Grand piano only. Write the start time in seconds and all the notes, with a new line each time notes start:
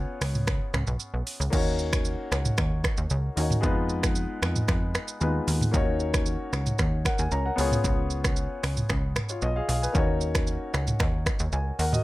Already playing: B3 C#4 F4 G#4 C#5
1.50 A#3 C#4 D#4 F#4
1.55 C#5
3.36 A#3 C#4 D#4 F#4 C#5
3.61 G#3 B3 D#4 F4
3.66 B4
5.20 G#3 B3 D#4 F4 B4
5.71 A#3 C#4 D#4 F#4
5.76 C#5
7.06 A#4 F#5
7.19 G#5
7.32 C#5 A#5
7.46 A#4 F#5
7.56 B3 C#4 F4 G#4
7.61 C#5
9.30 F4 C#5
9.42 D#5
9.56 G#4 F5
9.69 G#4 F5
9.82 B4 G#5
9.93 A#3 C#4 D#4 F#4
9.98 C#5
11.53 G#5
11.79 A#4 F#5
11.93 F#4 D#5